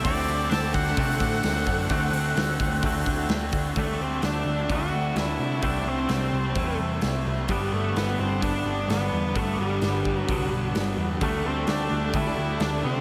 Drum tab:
HH |o-o-o-o-o-o-o-o-|o-o-o-o-o-o-o-o-|o---o---o---o---|o---o---o---o---|
SD |----o--o----o---|----o-------o---|----o-------o---|----o-------o---|
BD |o-----o-o-o---o-|o-----o-o-o---o-|o-------o-------|o-------o-------|

HH |o---o---o---o---|o---o---o---o---|o---o---o---o---|
SD |----o-------o---|----o-------o---|----o-------o---|
BD |o-------o-------|o-----o-o-------|o-------o-------|